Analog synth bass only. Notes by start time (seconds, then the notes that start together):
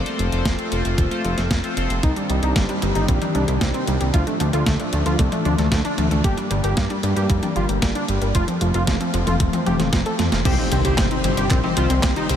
0.19 F1
0.32 F1
0.45 F1
0.72 F1
0.85 F1
0.98 D#1
1.25 F1
1.38 F1
1.51 F1
1.77 F1
1.90 F1
2.03 C2
2.30 C2
2.43 C2
2.56 G1
2.82 G1
2.96 G1
3.09 A#1
3.35 C2
3.48 C2
3.61 C2
3.88 C2
4.01 C2
4.14 D2
4.40 D2
4.53 D2
4.66 D2
4.93 D2
5.06 D2
5.19 C2
5.45 D2
5.58 D2
5.72 D2
5.98 D2
6.11 D2
6.24 G1
6.51 G1
6.64 G1
6.77 G2
7.03 G2
7.17 G2
7.30 F1
7.56 G1
7.69 G1
7.82 G1
8.09 G1
8.22 G1
8.35 F1
8.61 F1
8.75 F1
8.88 F1
9.14 F1
9.27 F1
9.40 D#1
9.67 F1
9.80 F1
9.93 F1
10.19 F2
10.32 F1
10.45 C2
10.72 C2
10.85 C2
10.98 G1
11.24 G1
11.37 G1
11.51 A#1
11.77 C2
11.90 C2
12.03 C2
12.30 C2